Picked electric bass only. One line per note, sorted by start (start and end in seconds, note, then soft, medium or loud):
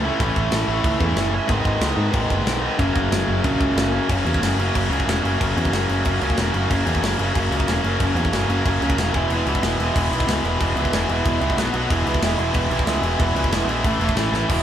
0.20 0.31 A1 medium
0.37 0.47 A1 medium
0.51 0.62 A1 medium
0.68 0.79 A1 loud
0.84 0.95 C#2 medium
1.00 1.12 E2 medium
1.16 1.39 F#1 loud
1.49 1.60 G#1 loud
1.65 1.76 G#1 medium
1.81 1.92 C#2 medium
1.97 2.08 G#2 medium
2.13 2.25 G#1 medium
2.31 2.42 F#1 loud
2.46 2.68 B1 medium
2.79 2.90 F#1 medium
2.95 3.07 F#1 loud
3.12 3.23 F#1 medium
3.28 3.39 F#1 loud
3.44 3.55 A#1 medium
3.60 3.72 C#2 medium
3.76 3.98 F#1 medium
4.09 4.21 F#1 medium
4.25 4.37 E2 medium
4.41 4.53 F#1 medium
4.57 4.69 F#1 loud
4.76 4.87 F#1 medium
4.90 5.02 C#2 loud
5.07 5.19 E1 medium
5.23 5.35 F#1 medium
5.41 5.52 F#1 loud
5.57 5.68 E2 medium
5.72 5.84 F#1 medium
5.89 6.01 F#1 medium
6.06 6.18 F#1 medium
6.22 6.34 C#2 medium
6.38 6.50 E1 medium
6.54 6.66 F#1 medium
6.70 6.82 F#1 loud
6.87 6.98 E2 medium
7.02 7.14 F#1 loud
7.19 7.31 F#1 medium
7.35 7.47 F#1 medium
7.51 7.63 C#2 loud
7.67 7.79 E1 medium
7.84 7.96 F#1 medium
8.00 8.12 F#1 medium
8.15 8.28 E2 medium
8.32 8.44 F#1 medium
8.48 8.60 F#1 loud
8.65 8.77 F#1 medium
8.81 8.93 C#2 medium
8.96 9.09 E1 medium
9.14 9.26 E1 medium
9.30 9.42 E1 medium
9.46 9.58 C#2 medium
9.63 9.75 E1 loud
9.78 9.90 E1 loud
9.96 10.07 E1 medium
10.11 10.23 B1 loud
10.27 10.39 C#2 medium
10.44 10.56 E1 medium
10.61 10.72 E1 loud
10.75 10.88 C#2 medium
10.93 11.04 E1 medium
11.09 11.21 E1 loud
11.25 11.37 E1 medium
11.41 11.53 C#2 medium
11.57 11.69 B1 loud
11.74 11.86 B1 loud
11.90 12.02 E1 medium
12.07 12.18 C#2 medium
12.22 12.34 E1 medium
12.38 12.50 E1 medium
12.55 12.66 E1 medium
12.70 12.82 B1 loud
12.86 12.98 C#2 medium
13.02 13.14 E1 medium
13.20 13.31 E1 medium
13.33 13.46 C#2 medium
13.50 13.62 E1 loud
13.66 13.84 A#1 loud
13.84 13.96 A1 medium
14.00 14.12 E1 loud
14.16 14.28 A1 loud
14.32 14.44 A1 loud
14.49 14.62 E1 loud